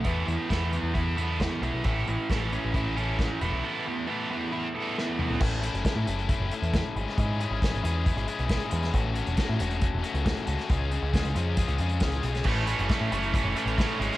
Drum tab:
CC |----------------|----------------|----------------|x---------------|
HH |x-x-x-x-x-x-x-x-|x-x-x-x-x-x-x-x-|----------------|--xxx-xxx-xxxxxx|
SD |----o-------o---|----o-------o---|------------o---|----o-------o--o|
T2 |----------------|----------------|--------------o-|----------------|
FT |----------------|----------------|---------------o|----------------|
BD |o---o---o---o---|o---o---o---o---|----------------|o---o---o---o---|

CC |----------------|----------------|----------------|x---------------|
HH |x-x-xxx-xxxxxxxx|x-xxx-xxx-xxxxxx|x-x-xxx-xxxxxxxx|--xxx-xxx-xxxxxx|
SD |----o-------o--o|----o-------o--o|----o-------o--o|----o-------o--o|
T2 |----------------|----------------|----------------|----------------|
FT |----------------|----------------|----------------|----------------|
BD |o---o---o---o---|o---o---o---o---|o---o---o---o---|o---o---o---o---|